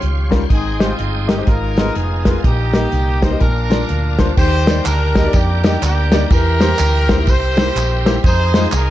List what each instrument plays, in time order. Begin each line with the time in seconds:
Already playing: grand piano D#3, horn section F4 G4, tonewheel organ G4 C#5 F5 C6
0.02 fingered electric bass C#2, closed hi-hat
0.30 grand piano G3 C#4 F4 A#4, kick, snare, closed hi-hat
0.49 fingered electric bass G#1, grand piano G#2, horn section C4 D#4, tonewheel organ G#4 D#5 G5, kick, closed hi-hat
0.53 horn section G#4
0.79 grand piano G#3 D#4 G4 C5, horn section C4 F4, snare, closed hi-hat
0.99 fingered electric bass G1, closed hi-hat
1.28 grand piano G#3 D#4 G4 A#4, horn section G4, snare, closed hi-hat
1.38 grand piano G#3 D#4 G4 C5
1.46 fingered electric bass G#1, grand piano G#2, horn section D#4 F4 A#4, tonewheel organ F5, kick, closed hi-hat
1.77 grand piano B3 F4 G#4 D#5, snare, closed hi-hat
1.95 fingered electric bass F1, horn section B3 F4 G#4, closed hi-hat
2.25 grand piano B3 F4 G#4 A#4, kick, snare, closed hi-hat
2.43 fingered electric bass A#1, grand piano A#2, horn section A#3 D#4 G4, tonewheel organ A#4 D#5 G5, kick, closed hi-hat
2.74 grand piano A#3 D#4 G4 D#5, snare, closed hi-hat
2.92 fingered electric bass C2, closed hi-hat
3.22 grand piano A#3 D#4 G4 C5, horn section C5, kick, snare, closed hi-hat
3.31 grand piano A#3 D#4 G4 D#5
3.39 fingered electric bass A#1, grand piano A#2, horn section D4 F4 A#4, tonewheel organ D5 F5, kick, closed hi-hat
3.70 grand piano A#3 D4 F4 D5, snare, closed hi-hat
3.89 fingered electric bass D2, closed hi-hat
4.19 grand piano A#3 D4 F4 C5, kick, snare, closed hi-hat
4.36 fingered electric bass D#2, grand piano D#3, horn section G4 C5, tonewheel organ A#4 D5 G5, kick, crash, tambourine
4.67 grand piano A#3 D#4 G4 D5, snare, ride, tambourine
4.85 fingered electric bass D2, horn section D4 G4 A#4, clap, ride, tambourine
5.15 grand piano A#3 D#4 G4 D#5, kick, snare, ride, tambourine
5.24 grand piano A#3 D#4 G4 D5
5.33 fingered electric bass F2, horn section A#3 D4 G4, kick, ride, tambourine
5.64 grand piano A#3 D#4 G4 D#5, snare, ride, tambourine
5.82 fingered electric bass D2, horn section A#3 D4 G4, clap, ride, tambourine
6.12 grand piano A#3 D#4 G4 D5, snare, ride, tambourine
6.30 fingered electric bass E2, grand piano E3, horn section G4 A#4, tonewheel organ E5 C6, kick, ride, tambourine
6.61 grand piano A#3 E4 G4 C5, snare, ride, tambourine
6.79 fingered electric bass D2, clap, ride, tambourine
7.09 grand piano A#3 E4 G4 C5, kick, snare, ride, tambourine
7.17 grand piano A#3 E4 G4 A#4
7.27 fingered electric bass C2, horn section G4 C5, kick, ride, tambourine
7.56 grand piano A#3 E4 G4 C5, snare, ride, tambourine
7.76 fingered electric bass A#1, clap, ride, tambourine
8.05 grand piano A#3 E4 G4 C5, snare, ride, tambourine
8.22 fingered electric bass F2, horn section D#4 G#4 C5, tonewheel organ G#4 D#5 F5, kick, ride, tambourine
8.54 grand piano G#3 D#4 F4 C5, snare, ride, tambourine
8.72 fingered electric bass C2, horn section D#4 A#4, clap, ride, tambourine